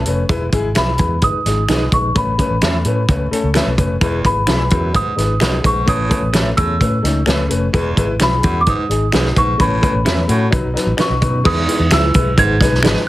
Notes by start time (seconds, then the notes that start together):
0.06 F1 A3 C#4 B4, closed hi-hat
0.29 E1 G#3 E4 B4, kick, closed hi-hat
0.52 G#1 G#3 E4 G#4, kick, closed hi-hat
0.75 B1 G#3 E4 G#4 B4 E5 B5, finger snap, snare, closed hi-hat
0.98 E2 G#3 E4 B4, kick, closed hi-hat
1.22 G#1 G#3 D#4 B4 D#6, kick, closed hi-hat
1.34 muted fingered electric bass stroke
1.45 G#1 G#3 D#4 G#4, snare, closed hi-hat
1.68 B1 G#3 D#4 G#4 B4 D#5, finger snap, snare, closed hi-hat
1.92 A#1 G#3 D#4 B4 C#6, kick, closed hi-hat
2.15 A1 A3 C#4 B4 B5, kick, closed hi-hat
2.38 A3 C#4 B4, kick, closed hi-hat
2.50 A1
2.61 E2 A3 C#4 A4 B4 C#5 E5, finger snap, snare, closed hi-hat
2.85 A2 A3 C#4 B4, closed hi-hat
3.08 C#2 A3 C#4 B4, kick, closed hi-hat
3.31 A3 C#4 A4, closed hi-hat
3.43 C#2
3.54 A3 C#4 A4 B4 E5, finger snap, snare, closed hi-hat
3.66 B1
3.78 F1 A3 C#4 B4, kick, closed hi-hat
4.01 E1 E2 G#3 E4 B4, kick, closed hi-hat
4.24 G#1 G#3 E4 B4 B5, kick, closed hi-hat
4.47 B1 G#3 E4 G#4 B4 E5, finger snap, snare, closed hi-hat
4.70 E2 F#2 G#3 E4 B4, kick, closed hi-hat
4.93 G#1 G#2 G#3 D#4 B4 D#6, kick, closed hi-hat
5.05 muted fingered electric bass stroke
5.16 G#1 G#3 D#4 B4, snare, closed hi-hat
5.40 B1 F#2 G#3 D#4 G#4 B4 D#5, finger snap, snare, closed hi-hat
5.63 A#1 G#2 G#3 D#4 B4 C#6, kick, closed hi-hat
5.86 A1 A2 A3 C#4 B4 D#6, kick, closed hi-hat
6.09 A3 C#4 B4, kick, closed hi-hat
6.22 A1
6.33 A3 C#4 A4 B4 E5, finger snap, snare, closed hi-hat
6.57 E2 A2 A3 C#4 G#4 E6, kick, closed hi-hat
6.79 A2 A3 C#4 B4, kick, closed hi-hat
7.03 C#2 A3 C#4 D#4, snare, closed hi-hat
7.26 C#2 A3 C#4 A4 B4 E5, finger snap, snare, closed hi-hat
7.49 F1 A3 C#4 B4, closed hi-hat
7.73 E1 E2 G#3 E4 B4, kick, closed hi-hat
7.97 G#1 G#3 E4 B4, kick, closed hi-hat
8.20 B1 G#3 E4 G#4 B4 E5 B5, finger snap, snare, closed hi-hat
8.43 E2 F#2 G#3 E4 F#4, kick, closed hi-hat
8.61 D6
8.66 G#1 G#2 G#3 D#4 B4 D#6, kick, closed hi-hat
8.78 muted fingered electric bass stroke
8.89 G#1 G#3 D#4 G#4, closed hi-hat
9.12 B1 F#2 G#3 D#4 G#4 B4 D#5, finger snap, snare, closed hi-hat
9.25 snare
9.35 A#1 G#2 G#3 D#4 B4 C#6, kick, closed hi-hat
9.58 A1 A2 A3 C#4 B4 B5, kick, closed hi-hat
9.81 A3 C#4 B4, kick, closed hi-hat
9.94 A1
10.05 E2 A3 C#4 E4 B4 E5, finger snap, snare, closed hi-hat
10.28 A2 A3 C#4 F#4, closed hi-hat
10.51 B1 F#3 D#4 B4, kick, closed hi-hat
10.64 B1
10.74 F#3 D#4 B4, snare, closed hi-hat
10.86 A1
10.97 F#3 C#4 D#4 F#4 B4 D#5 C#6, finger snap, snare, closed hi-hat
11.10 B1
11.21 B2 F#3 D#4 B4, kick, closed hi-hat
11.44 E2 G#3 D#4 E4 B4 D#6, kick, crash
11.67 G#3 E4 B4, closed hi-hat
11.80 E2
11.90 C#2 G#3 E4 G#4 B4 E5 E6, finger snap, snare, closed hi-hat
12.14 B1 G#3 E4 B4, kick, closed hi-hat
12.37 G#1 G#2 G#3 D#4 G#4 B4 G#6, kick, closed hi-hat
12.60 B1 G#3 D#4 B4, kick, snare, closed hi-hat
12.72 B1, snare
12.83 G#1 G#3 D#4 G#4 B4 D#5, finger snap, snare, closed hi-hat
12.96 snare